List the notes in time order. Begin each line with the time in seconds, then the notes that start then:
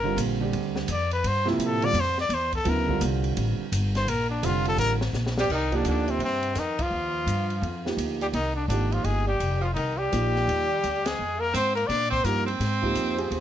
Already playing: G1 A#4
0.04 D3 G3 C4 F4
0.17 A#1, hi-hat pedal, ride
0.40 D3 G3 C4 G4
0.53 D2, ride
0.76 snare
0.88 F2, hi-hat pedal, ride
0.92 D5
1.11 B4, ride
1.24 G2 C5, ride
1.45 C3 F3 A#3 E4, snare
1.50 F4
1.58 A2, hi-hat pedal, ride
1.65 A4
1.82 D3 G3 C4 F4 D5, ride
1.93 F2, ride
2.00 C5
2.18 D5, snare
2.29 E2, hi-hat pedal, ride
2.34 C5
2.52 A4, kick, ride
2.64 D2 C#3 F#3 B3 E4, ride
2.70 A#4
2.88 D3 G3 C4 F4, kick
3.01 C2, hi-hat pedal, ride
3.24 ride
3.37 A1, ride
3.59 muted upright bass stroke
3.72 G1, hi-hat pedal, ride
3.95 C5, snare, ride
4.07 A#1 A#4, ride
4.30 D4
4.43 F1 D3 G3 C4 F4, hi-hat pedal, ride
4.65 A4, ride
4.78 A1 A#4, ride
5.01 snare
5.13 A#1, snare, hi-hat pedal
5.26 snare
5.38 G3 G4, snare
5.49 C2 D#3, kick, crash
5.54 D#4
5.72 D3 F3 A#3 D#4 G4, kick, ride
5.76 D4
5.84 D2 D3, hi-hat pedal, ride
5.89 D4
6.07 C3 C4, ride
6.19 G2 C3, ride
6.25 C4
6.43 ride
6.55 F2 D#3, snare, hi-hat pedal, ride
6.59 D#4
6.79 F3 F4, kick, ride
6.91 D#2
7.26 G2, hi-hat pedal, ride
7.50 ride
7.62 F2, ride
7.85 F3 A#3 D#4 G4, snare
7.97 D2, hi-hat pedal, ride
8.21 G3 G4, ride
8.33 C2 D#3 D#4, ride
8.55 D3 D4
8.68 G#1 D3 F3 A#3 D4 D#4 G4, hi-hat pedal, ride
8.92 F3 F4, ride
9.03 G1 G#3 G#4, ride
9.27 G3 G4
9.40 F1, hi-hat pedal, ride
9.61 F3 F4
9.74 C2 D#3 D#4, ride
9.98 G3 G4
10.12 A#1 F3 A#3 D#4 G4, hi-hat pedal, ride
10.36 snare
10.48 D#2, ride
10.83 D2, hi-hat pedal, ride
11.04 G#3 G#4, snare, ride
11.19 F2
11.39 A#3 A#4
11.53 G#2 C4 C5, hi-hat pedal, ride
11.75 A#3 A#4, ride
11.87 A#2 D4 D5, snare, ride
12.10 C4 C5, kick
12.24 G2 F3 A#3 D#4 G4 A#4, hi-hat pedal, ride
12.46 C4 C5, ride
12.60 G#2, snare, ride
12.82 F3 A#3 D#4 G4, kick
12.95 F2, hi-hat pedal, ride
13.17 C4 F4 G4 G#4, ride
13.31 D#2, ride